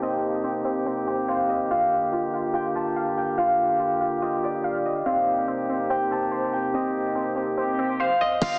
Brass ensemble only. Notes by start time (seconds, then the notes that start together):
Already playing: C3 A#3 D#4 G4
1.71 D3 F4
5.06 C3 A#3 D#4 G4
8.42 D3 A#3 F4 G4